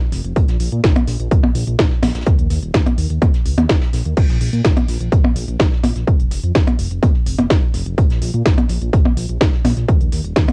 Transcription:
0.12 detuned saw bass F1, snare, closed hi-hat, open hi-hat
0.24 detuned saw bass F1, closed hi-hat
0.36 detuned saw bass A#1, kick, closed hi-hat
0.48 detuned saw bass A#1, snare, closed hi-hat
0.60 detuned saw bass A#1, closed hi-hat, open hi-hat
0.72 detuned saw bass A#2, closed hi-hat
0.83 detuned saw bass A#1, kick, snare, closed hi-hat
0.96 closed hi-hat, percussion blips
1.07 detuned saw bass A#1, snare, closed hi-hat, open hi-hat
1.20 detuned saw bass A#1, closed hi-hat
1.31 detuned saw bass A#1, kick, closed hi-hat
1.43 percussion blips
1.55 detuned saw bass A#1, closed hi-hat, open hi-hat
1.67 detuned saw bass A#1, closed hi-hat
1.79 detuned saw bass A#1, kick, snare, closed hi-hat
1.91 snare
2.02 detuned saw bass A#1, snare, closed hi-hat, open hi-hat, percussion blips
2.08 snare, closed hi-hat
2.14 detuned saw bass A#1, snare, closed hi-hat
2.21 snare, closed hi-hat
2.25 detuned saw bass D#2, kick, closed hi-hat
2.39 detuned saw bass D#2, closed hi-hat
2.50 detuned saw bass D#2, snare, closed hi-hat, open hi-hat
2.62 detuned saw bass D#1, closed hi-hat
2.73 detuned saw bass D#2, kick, snare, closed hi-hat
2.86 closed hi-hat, percussion blips
2.98 detuned saw bass D#2, closed hi-hat, open hi-hat
3.10 detuned saw bass D#2, closed hi-hat
3.22 detuned saw bass D#1, kick, closed hi-hat, percussion blips
3.34 snare, closed hi-hat
3.45 detuned saw bass C#2, closed hi-hat, open hi-hat
3.58 detuned saw bass D#2, closed hi-hat, percussion blips
3.69 detuned saw bass D#1, kick, snare, closed hi-hat
3.81 snare, closed hi-hat
3.93 detuned saw bass A#1, snare, closed hi-hat, open hi-hat
4.05 detuned saw bass D#2, closed hi-hat
4.17 detuned saw bass A#1, kick, closed hi-hat, crash
4.29 detuned saw bass A#1, snare, closed hi-hat
4.40 detuned saw bass A#1, closed hi-hat, open hi-hat
4.53 detuned saw bass A#2, closed hi-hat
4.64 detuned saw bass A#1, kick, snare, closed hi-hat
4.77 closed hi-hat, percussion blips
4.88 detuned saw bass A#1, snare, closed hi-hat, open hi-hat
5.01 detuned saw bass A#1, closed hi-hat
5.12 detuned saw bass A#1, kick, closed hi-hat
5.24 percussion blips
5.36 detuned saw bass A#1, closed hi-hat, open hi-hat
5.48 detuned saw bass A#1, closed hi-hat
5.59 detuned saw bass A#1, kick, snare, closed hi-hat
5.73 snare
5.83 detuned saw bass A#1, snare, closed hi-hat, open hi-hat, percussion blips
5.96 detuned saw bass A#1, snare, closed hi-hat
6.07 detuned saw bass F1, kick, closed hi-hat
6.20 detuned saw bass F1, closed hi-hat
6.31 detuned saw bass F1, snare, closed hi-hat, open hi-hat
6.43 detuned saw bass F2, closed hi-hat
6.55 detuned saw bass F1, kick, snare, closed hi-hat
6.67 closed hi-hat, percussion blips
6.79 detuned saw bass F1, closed hi-hat, open hi-hat
6.90 detuned saw bass F1, closed hi-hat
7.03 detuned saw bass F1, kick, closed hi-hat, percussion blips
7.15 snare
7.26 detuned saw bass F1, closed hi-hat, open hi-hat
7.39 detuned saw bass F1, closed hi-hat, percussion blips
7.50 detuned saw bass F1, kick, snare, closed hi-hat
7.74 detuned saw bass F1, snare, closed hi-hat, open hi-hat
7.86 detuned saw bass F1, closed hi-hat
7.98 detuned saw bass A#1, kick, closed hi-hat
8.10 detuned saw bass A#1, snare, closed hi-hat
8.22 detuned saw bass A#1, closed hi-hat, open hi-hat
8.34 detuned saw bass A#2, closed hi-hat
8.46 detuned saw bass A#1, kick, snare, closed hi-hat
8.58 closed hi-hat, percussion blips
8.68 detuned saw bass A#1, snare, closed hi-hat, open hi-hat
8.82 detuned saw bass A#1, closed hi-hat
8.93 detuned saw bass A#1, kick, closed hi-hat
9.05 percussion blips
9.17 detuned saw bass A#1, closed hi-hat, open hi-hat
9.29 detuned saw bass A#1, closed hi-hat
9.41 detuned saw bass A#1, kick, snare, closed hi-hat
9.53 snare
9.64 detuned saw bass A#1, snare, closed hi-hat, open hi-hat, percussion blips
9.77 detuned saw bass A#1, snare, closed hi-hat
9.88 detuned saw bass D#2, kick, closed hi-hat
10.01 detuned saw bass D#2, closed hi-hat
10.12 detuned saw bass D#2, snare, closed hi-hat, open hi-hat
10.24 detuned saw bass D#1, closed hi-hat
10.36 detuned saw bass D#2, kick, snare, closed hi-hat
10.48 closed hi-hat, percussion blips

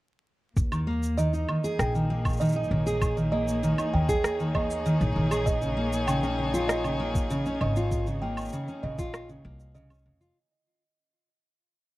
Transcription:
0.56 upright bass D#2, string quartet A#3, kick, shaker
0.72 steel-string acoustic guitar D#3, low woodblock, shaker
0.87 steel-string acoustic guitar A#3
1.03 shaker
1.18 steel-string acoustic guitar D#3, music box D#5, shaker
1.30 string quartet D#4, steel-string acoustic guitar D#4, shaker
1.49 steel-string acoustic guitar D#3, low woodblock
1.64 steel-string acoustic guitar G#4, string quartet G#4, shaker
1.79 upright bass A#1, music box G5, cross-stick, shaker
1.95 steel-string acoustic guitar D#3, shaker
2.10 steel-string acoustic guitar A#3
2.25 kick, low woodblock, shaker
2.29 shaker
2.33 shaker
2.37 steel-string acoustic guitar D#3, music box D#5, shaker
2.41 shaker
2.45 shaker
2.48 shaker
2.52 steel-string acoustic guitar D#4, shaker
2.64 string quartet C#5, shaker
2.71 upright bass A#1, steel-string acoustic guitar D#3
2.87 steel-string acoustic guitar G#4, shaker
3.02 kick, low woodblock, shaker
3.17 steel-string acoustic guitar D#3, shaker
3.32 steel-string acoustic guitar A#3, music box D#5
3.48 shaker
3.63 steel-string acoustic guitar D#3, shaker
3.78 steel-string acoustic guitar D#4, low woodblock, shaker
3.94 upright bass D#2, steel-string acoustic guitar D#3, music box G5
4.09 steel-string acoustic guitar G#4, kick, shaker
4.24 cross-stick, shaker
4.40 steel-string acoustic guitar D#3, shaker
4.55 steel-string acoustic guitar A#3, music box D#5, kick, low woodblock
4.71 shaker
4.86 steel-string acoustic guitar D#3, shaker
5.01 upright bass A#1, steel-string acoustic guitar D#4, shaker
5.16 upright bass A#1, steel-string acoustic guitar D#3
5.31 steel-string acoustic guitar G#4, low woodblock, shaker
5.46 music box D#5, kick, shaker
5.62 steel-string acoustic guitar C#3, shaker
5.77 steel-string acoustic guitar A#3
5.93 shaker
6.07 steel-string acoustic guitar C#3, music box G5, low woodblock, shaker
6.23 steel-string acoustic guitar C#4, shaker
6.39 steel-string acoustic guitar C#3
6.54 steel-string acoustic guitar F4, shaker
6.68 music box D#5, cross-stick, shaker
6.84 steel-string acoustic guitar C#3, low woodblock, shaker
7.00 steel-string acoustic guitar A#3
7.15 kick, shaker
7.30 steel-string acoustic guitar C#3, shaker
7.46 steel-string acoustic guitar C#4, shaker
7.61 upright bass G#1, steel-string acoustic guitar C#3, music box D#5, low woodblock
7.76 steel-string acoustic guitar F4, shaker
7.91 kick, shaker
8.07 steel-string acoustic guitar C#3, shaker
8.22 steel-string acoustic guitar A#3, music box G5
8.37 low woodblock, shaker
8.41 shaker
8.45 shaker
8.49 shaker
8.53 steel-string acoustic guitar C#3, shaker
8.68 steel-string acoustic guitar C#4, shaker
8.83 upright bass A#1, steel-string acoustic guitar C#3, music box D#5
8.99 steel-string acoustic guitar F4, kick, shaker
9.14 cross-stick, low woodblock, shaker
9.29 steel-string acoustic guitar C#3, shaker
9.45 upright bass C2, steel-string acoustic guitar A#3, kick
9.60 shaker
9.75 steel-string acoustic guitar C#3, music box D#5, shaker
9.90 steel-string acoustic guitar C#4, low woodblock, shaker
9.94 shaker
10.06 upright bass F1, steel-string acoustic guitar C#3
10.21 steel-string acoustic guitar F4, shaker

